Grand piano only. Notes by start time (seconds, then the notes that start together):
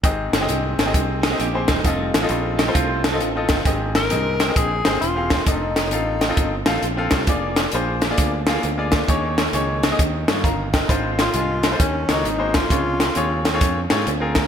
0.03 G#2 C4 G4 G#4 D#5
0.41 C4 G4 G#4 D#5
0.86 C4 G4 G#4 D#5
1.32 C4 G4 G#4 D#5
1.54 C4 G4 G#4 C5
1.85 C4 F4 A4 D#5
2.22 C4 F4 A4 D#5
2.67 C4 F4 A4 C5
3.13 C4 F4 A4 D#5
3.36 C4 F4 A4 D#5
3.66 G#2 C4 G4 G#4 D#5
4.10 C4 G4 G#4 D#5
4.48 C4 G4 G#4 D#5
4.85 C4 G4 G#4 C5
5.16 C4 G4 G#4 F5
5.46 C4 F4 A4 D#5
5.91 C4 F4 A4 F5
6.29 C4 F4 A4 D#5
6.67 C4 F4 A4 F5
6.97 C4 F4 A4 F5
7.28 A#3 F4 G#4 D5
7.73 A#3 F4 G#4 C5
8.10 A#3 F4 G#4 D5
8.48 A#3 F4 G#4 F5
8.78 A#3 F4 G#4 D5
9.08 D#3 A#3 D#4 G#4 C#5
9.53 A#3 D#4 G#4 C#5
9.91 A#3 D#4 G#4 D#5
9.98 D#3
10.28 F4 C#5
10.44 F5 A#5
10.73 A#4 D#5 G5
10.88 G#2 G#3 D#4 F4 C5
11.34 G#3 D#4 F4 G#4
11.71 G#3 D#4 F4 C5
11.80 D#3
12.09 A#3 D#4 F#4 C#5
12.25 G#2
12.38 A#3 F#4 G#4 C5
12.70 C3 C#3 F4 G#4 C#5
13.16 C4 F4 G#4 C#5
13.53 C4 F4 G#4 C#5
13.90 C4 F4 G#4 C#5
14.20 C4 F4 G#4 A#4